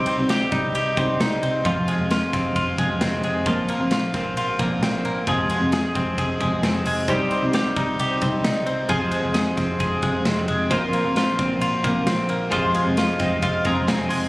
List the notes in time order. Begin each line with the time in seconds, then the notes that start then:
Already playing: C3 G3 C4 D#4 G4
0.06 C4, ride
0.17 C2 G3 C4 D#4
0.29 G4, snare, ride
0.51 C2 C3 G3 C4 D#4, kick, ride
0.74 C2 G4, ride
0.96 C2 C3 G3 C4 D#4, kick, ride
1.19 C2 C3 G3 C4 D#4, snare, ride
1.42 C2 C4, ride
1.65 F1 F2 C3 F3 G#3 C4 F4, kick, ride
1.88 G#3, ride
1.98 F1 F3 G#3 C4
2.11 F4, snare, ride
2.32 F1 C3 F3 G#3 C4, kick, snare, ride
2.56 F1 F4, kick, ride
2.77 F1 C3 F3 G#3 C4, kick, ride
3.00 F1 C3 F3 G#3 C4, snare, ride
3.23 F1 G#3, ride
3.46 A#1 A#2 F3 A#3 C4 F4, kick, ride
3.69 A#3, ride
3.79 A#1 F3 A#3 C4
3.91 F4, snare, ride
4.13 A#1 A#2 F3 A#3 C4, kick, snare, ride
4.37 A#1 F4, ride
4.58 A#1 A#2 F3 A#3 C4, kick, ride
4.81 A#1 A#2 F3 A#3 C4, snare, ride
5.05 A#1 A#3, ride
5.26 F1 F2 C3 F3 G#3 C4 G#4, kick, ride
5.50 G#3, ride
5.60 F1 F3 G#3 C4
5.72 G#4, snare, ride
5.94 F1 C3 F3 G#3 C4, kick, ride
6.18 F1 G#4, kick, ride
6.40 F1 C3 F3 G#3 C4, kick, ride
6.62 F1 C3 F3 G#3 C4, snare, ride
6.85 F1 G#3, open hi-hat, ride
7.08 C2 C3 G3 C4 D#4 G4 C5, kick, hi-hat pedal, ride
7.31 C4, ride
7.42 C2 G3 C4 D#4
7.53 G4, snare, ride
7.76 C2 C3 G3 C4 D#4, kick, ride
7.99 C2 G4, ride
8.21 C2 C3 G3 C4 D#4, kick, ride
8.44 C2 C3 G3 C4 D#4, snare, ride
8.67 C2 C4, ride
8.89 F1 F2 C3 F3 G#3 C4 F4 G#4 C5, kick, ride
9.11 G#3, ride
9.22 F1 F3 G#3 C4
9.34 G#4, snare, ride
9.57 F1 C3 F3 G#3 C4, kick, snare, ride
9.80 F1 G#4, kick, ride
10.02 F1 C3 F3 G#3 C4, kick, ride
10.25 F1 C3 F3 G#3 C4, snare, ride
10.48 F1 G#3, ride
10.70 A#1 A#2 F3 A#3 C4 F4 A#4 C5, kick, ride
10.93 A#3, ride
11.04 A#1 F3 A#3 C4
11.16 F4, snare, ride
11.39 A#1 A#2 F3 A#3 C4, kick, ride
11.60 A#1 F4, ride
11.84 A#1 A#2 F3 A#3 C4, kick, ride
12.06 A#1 A#2 F3 A#3 C4, snare, ride
12.29 A#1 A#3, ride
12.50 F1 F2 C3 F3 G#3 C4 F4 G#4 C5, kick, ride
12.74 G#3, ride
12.85 F1 F3 G#3 C4
12.97 F4, snare, ride
13.19 F1 C3 F3 G#3 C4 D#5, kick, snare, ride
13.42 F1 F4 F5, kick, ride
13.65 F1 C3 F3 G#3 C4 A#5, kick, ride
13.87 F1 C3 F3 G#3 C4 G#5, snare, ride
14.09 F1 G#3 C6, open hi-hat, ride